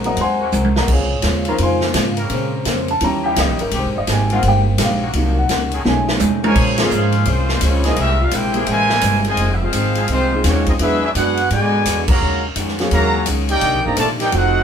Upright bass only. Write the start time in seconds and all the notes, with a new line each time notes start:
Already playing: A#1
0.17 D#2
0.52 C2
0.87 C#2
0.99 C2
1.12 G#1
1.23 D#2
1.59 F2
1.94 G#2
2.30 A#2
2.65 F2
3.01 D#2
3.37 C#2
3.48 A#1
3.60 G1
3.72 C2
3.84 G#1
3.96 G1
4.07 G#1
4.43 G1
4.79 A#1
5.14 C2
5.49 C#2
5.85 B1
6.20 D#2
6.55 A#2
6.91 G#2
7.26 C2
7.61 C#2
7.96 C2
8.32 A#1
8.67 A1
9.02 G1
9.38 F1
9.73 G#1
10.08 C2
10.44 D#2
10.79 E2
11.15 F#2
11.51 G#2
11.86 E2
12.21 D#2
12.56 F2
12.91 D#2
13.26 C#2
13.62 C2
13.74 A#1
13.86 G1
13.97 A#1
14.32 F1